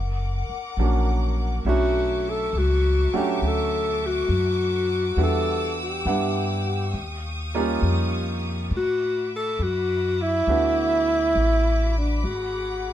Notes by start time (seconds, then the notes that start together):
Already playing: F#1 A#4 F#5 D6
0.49 muted upright bass stroke
0.77 A#1 F#3 A#3 C#4 D4 F#4
1.63 B1 F#3 A3 C#4 D4 E4 A4 E5 C#6 D6
1.69 F#4
2.29 A4
2.53 C#2
2.58 F#4
3.14 F#3 A3 C#4 D4 F#4 G4, muted upright bass stroke
3.42 D2
3.47 A4
4.06 F#4
4.29 F#2
5.17 E2 G3 B3 D4 E4 F#4 F#5 E6
5.23 A4
5.83 G4
6.05 G2 G3 B3 D4 E4 F#5
6.93 D#2 G4 F5 C#6 D#6
7.55 G3 A#3 C#4 D#4 F4
7.82 F2
8.71 A2 F#4 E5 B5 D6
8.77 F#4
9.36 A4
9.59 F#2 F#4
10.22 E4
10.47 D2 A3 B3 D4 E4 F#4
11.35 A1
11.98 D4
12.23 G#1 F#4 G#4 F#5